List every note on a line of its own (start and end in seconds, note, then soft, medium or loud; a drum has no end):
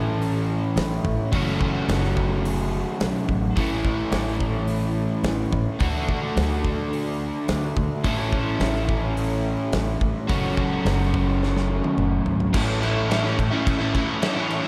0.00 0.57 A1 medium
0.00 1.30 A2 medium
0.00 1.32 E3 medium
0.00 1.33 A3 medium
0.00 1.33 C#4 medium
0.00 1.34 E4 loud
0.00 2.60 A4 medium
0.22 open hi-hat medium
0.76 0.99 A1 medium
0.76 snare loud
0.76 open hi-hat medium
1.04 1.16 A1 loud
1.04 kick medium
1.32 1.79 F#1 medium
1.32 3.56 F#3 medium
1.32 3.57 A3 medium
1.32 3.58 C#4 loud
1.32 3.58 F#4 medium
1.32 kick loud
1.32 open hi-hat medium
1.61 kick medium
1.88 2.81 F#1 medium
1.88 snare loud
1.88 open hi-hat medium
2.04 snare soft
2.17 kick medium
2.45 open hi-hat medium
3.00 3.26 B1 medium
3.00 snare loud
3.00 open hi-hat medium
3.29 3.54 A1 medium
3.29 kick medium
3.56 4.03 A1 medium
3.56 5.78 A2 loud
3.56 5.79 E3 loud
3.56 5.80 A3 loud
3.56 5.81 C#4 medium
3.56 5.79 E4 loud
3.56 kick loud
3.56 open hi-hat medium
3.85 kick medium
4.12 5.05 A1 medium
4.12 snare loud
4.12 open hi-hat medium
4.27 snare soft
4.40 kick medium
4.68 open hi-hat medium
5.23 5.47 A1 medium
5.23 snare loud
5.23 open hi-hat medium
5.52 5.64 A1 loud
5.52 kick medium
5.79 6.27 D2 medium
5.79 8.03 D3 medium
5.79 8.05 A3 medium
5.79 8.03 D4 loud
5.79 8.06 F#4 loud
5.79 kick loud
5.79 open hi-hat medium
6.09 kick medium
6.37 7.30 D2 medium
6.37 snare loud
6.37 open hi-hat medium
6.64 kick medium
6.93 open hi-hat medium
7.48 7.72 D2 medium
7.48 snare loud
7.48 open hi-hat medium
7.76 7.88 D2 loud
7.76 kick medium
8.04 8.51 A1 medium
8.04 10.28 A2 medium
8.04 10.28 E3 medium
8.04 10.28 A3 loud
8.04 10.29 C#4 medium
8.04 10.30 E4 loud
8.04 kick loud
8.04 open hi-hat medium
8.33 kick medium
8.60 9.54 A1 medium
8.60 snare loud
8.60 open hi-hat medium
8.75 snare soft
8.89 kick medium
9.17 open hi-hat medium
9.72 9.96 A1 medium
9.72 snare loud
9.72 open hi-hat medium
10.01 10.13 A1 medium
10.01 kick medium
10.28 10.76 F#1 medium
10.28 12.52 F#3 medium
10.28 12.52 A3 medium
10.28 12.52 C#4 loud
10.28 12.53 F#4 loud
10.28 kick loud
10.28 open hi-hat medium
10.57 kick medium
10.85 11.79 F#1 medium
10.85 snare loud
10.85 open hi-hat medium
11.14 kick medium
11.43 snare medium
11.57 snare medium
11.84 high tom medium
11.97 12.23 F#1 medium
11.97 mid tom medium
12.26 12.51 G#1 medium
12.26 floor tom medium
12.40 floor tom medium
12.53 13.47 A1 loud
12.53 13.09 A2 loud
12.53 12.80 E3 loud
12.53 12.81 A3 loud
12.53 12.81 C#4 loud
12.53 12.82 E4 loud
12.53 kick loud
12.53 crash loud
12.53 crash medium
12.81 13.09 E3 medium
12.81 13.10 A3 medium
12.81 13.10 C#4 medium
12.81 13.11 E4 medium
12.81 snare soft
12.81 crash medium
13.09 14.21 A2 medium
13.09 13.37 E3 medium
13.09 13.25 A3 loud
13.09 13.24 C#4 medium
13.09 13.23 E4 medium
13.09 snare loud
13.09 crash medium
13.23 13.37 A3 medium
13.23 13.38 C#4 medium
13.23 13.38 E4 medium
13.23 snare soft
13.37 muted overdriven electric guitar stroke soft
13.37 kick medium
13.37 crash medium
13.51 13.81 A3 medium
13.51 13.80 C#4 medium
13.51 13.78 E4 medium
13.67 13.90 A1 medium
13.67 kick loud
13.67 crash medium
13.79 13.94 A3 medium
13.79 13.94 C#4 medium
13.79 13.94 E4 medium
13.93 14.21 E3 medium
13.93 14.22 A3 medium
13.93 14.23 C#4 medium
13.93 14.22 E4 medium
13.93 kick medium
13.93 crash medium
14.21 14.64 A2 medium
14.21 14.64 E3 loud
14.21 14.37 A3 loud
14.21 14.36 C#4 loud
14.21 14.34 E4 loud
14.21 snare loud
14.21 crash medium
14.35 14.65 A3 medium
14.35 14.64 C#4 medium
14.35 14.62 E4 medium
14.50 crash medium
14.63 14.68 C#4 medium
14.63 14.68 E4 medium